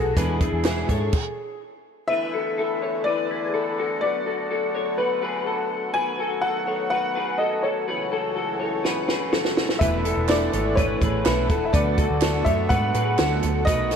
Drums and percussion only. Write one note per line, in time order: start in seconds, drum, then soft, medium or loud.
0.17 kick loud
0.17 closed hi-hat loud
0.40 kick medium
0.40 closed hi-hat medium
0.64 snare loud
0.64 clap loud
0.64 closed hi-hat loud
0.89 kick medium
0.89 closed hi-hat medium
1.13 kick loud
1.13 crash medium
8.85 snare medium
9.09 snare medium
9.33 snare medium
9.45 snare medium
9.57 snare loud
9.69 snare medium
9.81 kick loud
9.81 closed hi-hat loud
10.05 closed hi-hat medium
10.28 snare loud
10.28 clap loud
10.28 closed hi-hat loud
10.53 closed hi-hat medium
10.77 kick loud
10.77 closed hi-hat medium
11.01 kick medium
11.01 closed hi-hat medium
11.25 snare loud
11.25 clap loud
11.25 closed hi-hat loud
11.49 kick loud
11.49 closed hi-hat medium
11.74 kick loud
11.74 closed hi-hat loud
11.98 kick loud
11.98 closed hi-hat medium
12.21 snare loud
12.21 clap loud
12.21 closed hi-hat loud
12.46 kick medium
12.46 closed hi-hat medium
12.70 kick medium
12.70 closed hi-hat medium
12.94 closed hi-hat medium
13.18 snare loud
13.18 clap loud
13.18 closed hi-hat loud
13.43 closed hi-hat medium
13.67 kick loud
13.67 closed hi-hat loud
13.91 snare soft
13.91 closed hi-hat medium